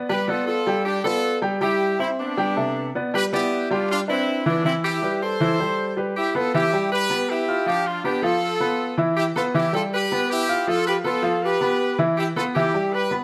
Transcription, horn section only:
0.10 G4 B4
0.29 F4 A4
0.47 F4 A4
0.86 D4 G4
1.05 F4 A4
1.62 E4 G4
2.01 C4 E4
2.20 B3 D4
3.16 G4 B4
3.34 E4 G4
3.72 D4 F4
3.92 D4 F4
4.09 C4 E4
4.47 B3 D4
4.66 C4 E4
4.85 E4 G4
5.23 A4 C5
6.17 E4 G4
6.36 F4 A4
6.55 E4 G4
6.92 G4 B4
7.30 E4 G4
7.68 D4 G4
7.87 D4 F4
8.05 D4 G4
8.23 F4 A4
9.17 E4 G4
9.36 F4 A4
9.56 E4 G4
9.75 F4 A4
9.94 G4 B4
10.30 E4 G4
10.68 F4 A4
10.87 G4 B4
11.05 F4 A4
11.44 G4 B4
12.17 E4 G4
12.37 F4 A4
12.55 E4 G4
12.93 G4 B4

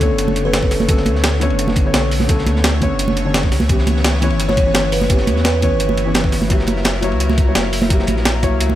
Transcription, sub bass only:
Already playing: D2
0.10 F#1
1.06 D2
1.50 F#1
1.94 B1
2.47 D2
2.91 F#1
3.52 C#2
3.61 C#2
3.69 C#2
4.31 G1
5.27 E2
5.71 G1
6.68 F#1
7.12 C#2
7.55 F#1
8.08 A#1
8.52 C#2

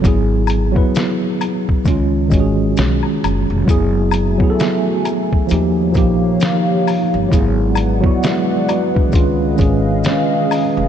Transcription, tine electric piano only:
0.02 F#3 B3 E4
0.07 G#4
0.72 F#3 B3 E4
0.77 B4
1.84 D#3 G#3 C#4
1.90 F4
2.28 D#3 G#3 C#4
2.34 F#4
2.40 G#4
3.65 F#3 B3 E4
3.70 G#4
4.38 F#3 B3 E4
4.43 G#4
4.50 A4
5.47 F3 A#3 D#4
5.53 G4
5.92 F3 A#3 D#4
5.98 G4
7.29 F#3 B3 E4
7.34 G#4
8.00 F#3 B3 E4
8.06 F#4
8.23 G#4 E5
8.69 F#4 D5
8.95 D4 B4
9.09 D#3 G#3 C#4
9.15 F4
9.54 D#3 G#3 C#4
9.60 G#4

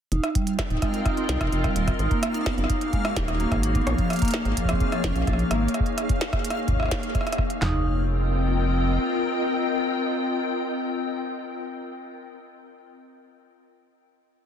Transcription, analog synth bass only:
0.12 F1
0.70 D#1
1.29 C2
1.41 F1
1.52 F1
1.76 D#1
1.99 G#1
2.58 F#1
3.16 D#1
3.52 G#1
3.87 A#1
4.45 G#1
5.04 F1
5.16 A#1
5.27 A#1
5.51 G#1
7.62 F1

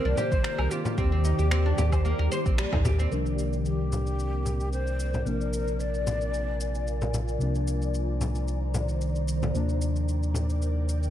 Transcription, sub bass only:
0.05 C2
0.32 A#1
0.58 C2
0.98 D#2
1.39 D#2
1.78 D#2
2.19 D#2
2.46 A#1
2.73 D#2
3.12 C2
5.26 A#1
7.41 C2
9.54 D#2

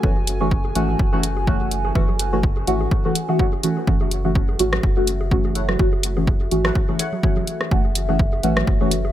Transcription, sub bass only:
0.03 F#1
0.75 G#1
0.99 F#1
1.95 F#1
2.67 G#1
3.87 F#1
4.59 G#1
4.83 F#1
5.79 F#1
6.51 G#1
7.71 F#1
8.43 G#1
8.67 F#1

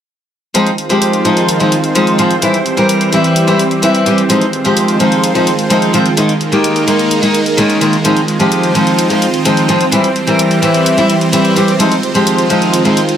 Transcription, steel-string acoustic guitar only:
0.54 F3 G#3 C4 D#4
0.89 F3 G#3 C4 G4
1.25 F3 G#3 C4 D#4
1.60 F3 G#3 C4 D#4
1.95 F3 G#3 C4 D#4
2.18 F3 G#3 C4 F4
2.42 E3 G3 C4 E4
2.77 E3 G3 C4 A#4
3.12 E3 G3 C4 E4
3.47 E3 G3 C4 E4
3.82 E3 G3 C4 E4
4.06 E3 G3 C4 G4
4.29 F3 G#3 C4 D#4
4.64 F3 G#3 C4 G4
4.99 F3 G#3 C4 D#4
5.35 F3 G#3 C4 D#4
5.70 F3 G#3 C4 D#4
5.93 F3 G#3 C4 F4
6.17 D#3 G#3 A#3 D#4
6.52 D#3 G#3 A#3 G4
6.87 D#3 G#3 A#3 D#4
7.22 D#3 G#3 A#3 D#4
7.57 D#3 G#3 A#3 C#4
7.81 D#3 G#3 A#3 F4
8.04 F3 G#3 C4 D#4
8.39 F3 G#3 C4 G4
8.74 F3 G#3 C4 D#4
9.10 F3 G#3 C4 D#4
9.45 F3 G#3 C4 D#4
9.68 F3 G#3 C4 F4
9.92 E3 G3 C4 E4
10.27 E3 G3 C4 A#4
10.62 E3 G3 C4 E4
10.97 E3 G3 C4 E4
11.32 E3 G3 C4 E4
11.56 E3 G3 C4 G4
11.79 F3 G#3 C4 D#4
12.14 F3 G#3 C4 G4
12.49 F3 G#3 C4 D#4
12.85 F3 G#3 C4 D#4

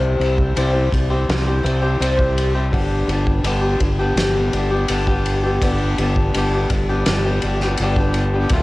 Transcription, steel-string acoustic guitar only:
Already playing: C3 G3 C4 E4 G4 C5
0.18 C4 E4 G4 C5
0.55 C3 G3 C4 E4 G4 C5
0.73 C4 E4 G4 C5
0.92 muted steel-string acoustic guitar stroke
1.10 C4 E4 G4 C5
1.46 C4 E4 G4 C5
1.63 C4 E4 G4 C5
1.82 C4 E4 G4 C5
2.00 C3 G3 C4 E4 G4 C5
2.16 C4 E4 G4 C5
2.54 C4 E4 G4 C5
2.70 G2 D3 G3 B3 D4 G4
3.08 G3 B3 D4 G4
3.44 G2 D3 G3 B3 D4 G4
3.61 G3 B3 D4 G4
3.80 muted steel-string acoustic guitar stroke
3.99 G3 B3 D4 G4
4.35 G3 B3 D4 G4
4.54 G3 B3 D4 G4
4.71 G3 B3 D4 G4
4.88 G2 D3 G3 B3 D4 G4
5.07 G3 B3 D4 G4
5.43 G3 B3 D4 G4
5.61 G2 D3 G3 B3 D4 G4
5.98 G3 B3 D4 G4
6.34 G2 D3 G3 B3 D4 G4
6.53 G3 B3 D4 G4
6.71 muted steel-string acoustic guitar stroke
6.89 G3 B3 D4 G4
7.25 G3 B3 D4 G4
7.44 G3 B3 D4 G4
7.63 G3 B3 D4 G4
7.81 G2 D3 G3 B3 D4 G4
7.98 G3 B3 D4 G4
8.34 G3 B3 D4 G4
8.51 D2 A2 D3 A3 F4

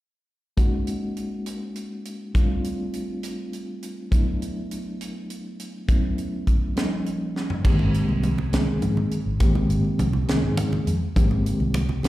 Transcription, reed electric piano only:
0.57 G#3 A#3 C#4 D#4 F#4
2.34 G3 A3 C4 D4 F4
4.11 F#3 A3 B3 D4 E4
5.88 F#3 A3 B3 C#4 E4
6.76 F3 G3 A#3 C#4 D#4
7.64 D#3 G#3 A#3 C4 G4
8.52 D#3 G#3 A#3 C4 G#4
9.40 D#3 G#3 A#3 C4 G4
10.28 D#3 G#3 A#3 C4 G#4
11.16 D#3 G#3 A#3 C4 G4
12.03 D#3 G#3 A#3 C4 G4

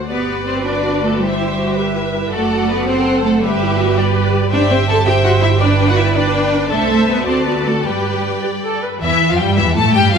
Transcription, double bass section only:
0.09 G1
2.32 F#1
3.44 G1
4.53 G1
6.70 C2
7.26 D2
7.85 G2
9.02 E2
9.31 F2
9.40 G2
9.59 E2
9.77 A2
9.95 G2
10.13 F2

